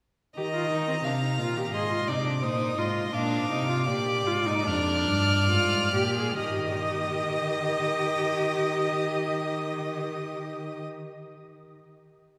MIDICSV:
0, 0, Header, 1, 5, 480
1, 0, Start_track
1, 0, Key_signature, -3, "major"
1, 0, Tempo, 692042
1, 255, Time_signature, 4, 2, 24, 8
1, 2178, Tempo, 762389
1, 3138, Tempo, 829876
1, 3618, Tempo, 891530
1, 4098, Tempo, 924499
1, 7212, End_track
2, 0, Start_track
2, 0, Title_t, "Violin"
2, 0, Program_c, 0, 40
2, 255, Note_on_c, 0, 82, 68
2, 1204, Note_on_c, 0, 84, 70
2, 1215, Note_off_c, 0, 82, 0
2, 1440, Note_on_c, 0, 86, 64
2, 1450, Note_off_c, 0, 84, 0
2, 1684, Note_on_c, 0, 87, 70
2, 1695, Note_off_c, 0, 86, 0
2, 1929, Note_on_c, 0, 84, 68
2, 1939, Note_off_c, 0, 87, 0
2, 2178, Note_off_c, 0, 84, 0
2, 2182, Note_on_c, 0, 86, 81
2, 3143, Note_on_c, 0, 89, 89
2, 3152, Note_off_c, 0, 86, 0
2, 4094, Note_off_c, 0, 89, 0
2, 4097, Note_on_c, 0, 87, 63
2, 6410, Note_off_c, 0, 87, 0
2, 7212, End_track
3, 0, Start_track
3, 0, Title_t, "Violin"
3, 0, Program_c, 1, 40
3, 254, Note_on_c, 1, 75, 66
3, 721, Note_on_c, 1, 77, 65
3, 732, Note_off_c, 1, 75, 0
3, 1193, Note_off_c, 1, 77, 0
3, 1197, Note_on_c, 1, 75, 60
3, 1440, Note_on_c, 1, 74, 62
3, 1450, Note_off_c, 1, 75, 0
3, 1681, Note_on_c, 1, 72, 73
3, 1692, Note_off_c, 1, 74, 0
3, 1921, Note_off_c, 1, 72, 0
3, 1925, Note_on_c, 1, 75, 60
3, 2178, Note_on_c, 1, 77, 73
3, 2188, Note_off_c, 1, 75, 0
3, 2646, Note_off_c, 1, 77, 0
3, 2649, Note_on_c, 1, 74, 77
3, 4077, Note_off_c, 1, 74, 0
3, 4098, Note_on_c, 1, 75, 69
3, 6411, Note_off_c, 1, 75, 0
3, 7212, End_track
4, 0, Start_track
4, 0, Title_t, "Viola"
4, 0, Program_c, 2, 41
4, 256, Note_on_c, 2, 67, 58
4, 303, Note_off_c, 2, 67, 0
4, 374, Note_on_c, 2, 65, 61
4, 486, Note_off_c, 2, 65, 0
4, 491, Note_on_c, 2, 63, 68
4, 607, Note_off_c, 2, 63, 0
4, 612, Note_on_c, 2, 60, 52
4, 659, Note_off_c, 2, 60, 0
4, 732, Note_on_c, 2, 62, 57
4, 778, Note_off_c, 2, 62, 0
4, 849, Note_on_c, 2, 63, 50
4, 964, Note_off_c, 2, 63, 0
4, 969, Note_on_c, 2, 65, 65
4, 1091, Note_on_c, 2, 67, 63
4, 1101, Note_off_c, 2, 65, 0
4, 1203, Note_off_c, 2, 67, 0
4, 1208, Note_on_c, 2, 68, 66
4, 1323, Note_off_c, 2, 68, 0
4, 1326, Note_on_c, 2, 65, 53
4, 1447, Note_on_c, 2, 63, 59
4, 1458, Note_off_c, 2, 65, 0
4, 1563, Note_off_c, 2, 63, 0
4, 1567, Note_on_c, 2, 62, 58
4, 1614, Note_off_c, 2, 62, 0
4, 1687, Note_on_c, 2, 63, 69
4, 1930, Note_on_c, 2, 65, 65
4, 1940, Note_off_c, 2, 63, 0
4, 2171, Note_off_c, 2, 65, 0
4, 2175, Note_on_c, 2, 62, 73
4, 2403, Note_off_c, 2, 62, 0
4, 2406, Note_on_c, 2, 63, 74
4, 2520, Note_off_c, 2, 63, 0
4, 2524, Note_on_c, 2, 65, 60
4, 2637, Note_off_c, 2, 65, 0
4, 2641, Note_on_c, 2, 67, 76
4, 2887, Note_on_c, 2, 65, 70
4, 2896, Note_off_c, 2, 67, 0
4, 3009, Note_on_c, 2, 63, 82
4, 3018, Note_off_c, 2, 65, 0
4, 3134, Note_off_c, 2, 63, 0
4, 3137, Note_on_c, 2, 62, 78
4, 3608, Note_off_c, 2, 62, 0
4, 3618, Note_on_c, 2, 65, 77
4, 3849, Note_off_c, 2, 65, 0
4, 3852, Note_on_c, 2, 67, 68
4, 3970, Note_off_c, 2, 67, 0
4, 3973, Note_on_c, 2, 68, 61
4, 4089, Note_off_c, 2, 68, 0
4, 4092, Note_on_c, 2, 67, 61
4, 6408, Note_off_c, 2, 67, 0
4, 7212, End_track
5, 0, Start_track
5, 0, Title_t, "Cello"
5, 0, Program_c, 3, 42
5, 253, Note_on_c, 3, 51, 66
5, 699, Note_off_c, 3, 51, 0
5, 726, Note_on_c, 3, 48, 61
5, 963, Note_on_c, 3, 46, 57
5, 974, Note_off_c, 3, 48, 0
5, 1195, Note_off_c, 3, 46, 0
5, 1200, Note_on_c, 3, 44, 63
5, 1440, Note_on_c, 3, 48, 58
5, 1450, Note_off_c, 3, 44, 0
5, 1684, Note_on_c, 3, 46, 60
5, 1694, Note_off_c, 3, 48, 0
5, 1925, Note_off_c, 3, 46, 0
5, 1930, Note_on_c, 3, 44, 62
5, 2173, Note_off_c, 3, 44, 0
5, 2178, Note_on_c, 3, 46, 69
5, 2403, Note_off_c, 3, 46, 0
5, 2407, Note_on_c, 3, 48, 63
5, 2644, Note_on_c, 3, 46, 62
5, 2653, Note_off_c, 3, 48, 0
5, 2883, Note_off_c, 3, 46, 0
5, 2887, Note_on_c, 3, 44, 73
5, 3137, Note_on_c, 3, 41, 70
5, 3146, Note_off_c, 3, 44, 0
5, 3372, Note_on_c, 3, 43, 69
5, 3381, Note_off_c, 3, 41, 0
5, 3616, Note_on_c, 3, 44, 66
5, 3624, Note_off_c, 3, 43, 0
5, 3850, Note_off_c, 3, 44, 0
5, 3853, Note_on_c, 3, 46, 64
5, 4092, Note_off_c, 3, 46, 0
5, 4096, Note_on_c, 3, 51, 64
5, 6410, Note_off_c, 3, 51, 0
5, 7212, End_track
0, 0, End_of_file